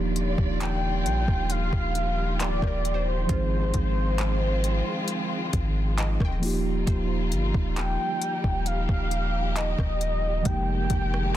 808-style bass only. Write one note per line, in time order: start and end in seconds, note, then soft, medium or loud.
0.00 0.36 D#1 loud
0.38 1.07 D#1 loud
1.05 1.27 A#1 medium
1.28 1.71 D#1 medium
1.73 2.41 D#1 loud
2.40 2.61 D1 medium
2.62 3.27 D#1 loud
3.29 3.72 G#1 loud
3.74 4.82 G#1 loud
5.53 6.18 G#1 loud
6.20 6.85 D#1 loud
6.87 7.34 D#1 loud
7.32 7.53 G1 loud
7.55 7.98 D#1 loud
8.44 8.87 D#1 loud
8.89 9.75 D#1 loud
9.79 10.43 D#1 loud
10.46 10.89 F1 loud
10.90 11.37 F1 loud